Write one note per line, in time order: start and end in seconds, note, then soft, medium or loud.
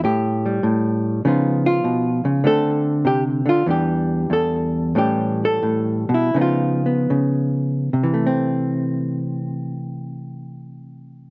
0.00 0.62 A2 medium
0.00 0.45 G3 soft
0.05 1.24 G4 medium
0.46 1.25 G3 soft
0.63 1.24 A2 medium
1.25 1.84 C#3 medium
1.25 2.43 F3 soft
1.25 2.43 B3 soft
1.25 2.43 D#4 soft
1.25 1.65 F4 soft
1.66 2.45 F4 medium
1.84 2.24 B2 medium
2.25 2.44 C#3 medium
2.44 3.44 D3 medium
2.44 3.64 A3 soft
2.44 3.64 C4 soft
2.44 3.06 A4 loud
3.05 3.46 C3 medium
3.05 3.23 G4 medium
3.46 3.66 D3 medium
3.46 3.68 F4 medium
3.66 4.29 E2 medium
3.66 4.92 E3 soft
3.66 4.95 G3 soft
3.66 4.93 D4 soft
3.70 4.31 G4 medium
4.30 4.95 E2 medium
4.30 4.96 A4 medium
4.95 5.61 A2 medium
4.95 6.33 E3 soft
4.95 6.36 G3 soft
4.95 6.33 C#4 soft
4.95 5.42 G4 medium
5.45 6.13 A4 medium
5.63 6.09 A2 medium
6.09 6.34 B2 medium
6.14 6.37 E4 medium
6.34 7.09 C#3 medium
6.34 7.91 F3 soft
6.34 6.85 B3 soft
6.34 7.91 D#4 soft
6.41 7.97 F4 medium
6.86 7.91 B3 soft
7.10 7.90 C#3 medium
7.93 11.30 C3 medium
8.04 11.30 E3 medium
8.14 11.30 A3 soft
8.27 11.30 C4 medium